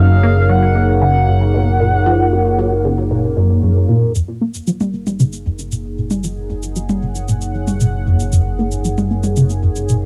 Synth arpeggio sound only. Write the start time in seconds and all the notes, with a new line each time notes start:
Already playing: F#2
0.23 A#3
0.49 F#3
0.75 A#3
1.02 C#3
1.28 F#2
1.54 B2
1.80 A#2
2.06 F3
2.32 F#2
2.59 F#3
2.85 C#3
3.11 A#2
3.37 F#2
3.63 F#2
3.89 A#2
4.15 F#2
4.41 A#3
4.67 F#3
4.94 A#3
5.20 C#3
5.46 F#2
5.72 B2
5.98 A#2
6.24 F3
6.50 F#2
6.76 F#3
7.02 C#3
7.28 A#2
7.54 F#3
7.81 B2
8.06 F#2
8.32 F#2
8.59 A#3
8.85 F#3
9.11 A#3
9.37 C#3
9.63 F#2
9.89 B2